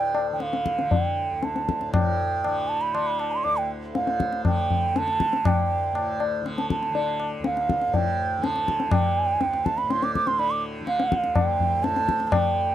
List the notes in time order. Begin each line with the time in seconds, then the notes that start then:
Already playing: D2 A2 D3 G5
0.15 tabla na
0.31 D3 G5
0.40 F5, tabla te
0.53 tabla te
0.66 tabla ke
0.79 D3, tabla te
0.91 G5, tabla tin, tabla ge
1.31 D2
1.43 A5, tabla te
1.56 tabla te
1.69 tabla ke
1.81 A2, tabla te
1.93 A2 G5, tabla na, tabla ge
2.44 D3, tabla na
2.68 A5
2.81 B5
2.94 D3 C6, tabla na
3.07 B5
3.19 A5, tabla na
3.32 C6
3.44 D2 D6, tabla tin
3.57 G5
3.95 A2 F5, tabla te
4.07 tabla te
4.20 tabla ke
4.33 tabla te
4.44 D3 G5, tabla na, tabla ge
4.70 tabla ge
4.93 D3 A5, tabla te
5.08 tabla te
5.20 tabla ke
5.33 tabla te
5.43 D2, tabla na, tabla ge
5.47 G5
5.93 A2, tabla na
6.20 tabla na
6.42 D3
6.46 tabla te
6.58 A5, tabla te
6.70 A5, tabla ke
6.83 tabla te
6.90 D3
6.95 tabla tin
7.20 tabla na
7.39 D2
7.44 F5, tabla te
7.57 tabla te
7.69 tabla ke
7.82 tabla te
7.88 A2
7.94 G5, tabla tin, tabla ge
8.38 D3
8.44 A5, tabla te
8.55 tabla te
8.68 tabla ke
8.80 tabla te
8.87 D3
8.91 G5, tabla na, tabla ge
9.36 D2
9.41 tabla te
9.54 tabla te
9.65 A5, tabla ke
9.78 B5, tabla te
9.83 A2
9.90 C6, tabla te
10.02 D6, tabla te
10.15 D6, tabla ke
10.27 D3 C6, tabla te
10.39 B5, tabla tin
10.51 D6
10.80 D3
10.87 F5, tabla te
11.00 tabla te
11.12 tabla ke
11.24 D2, tabla te
11.35 G5, tabla na, tabla ge
11.60 tabla ge
11.75 A2
11.84 A5, tabla te
11.96 tabla te
12.09 tabla ke
12.20 tabla te
12.25 D3 A5
12.32 G5, tabla na, tabla ge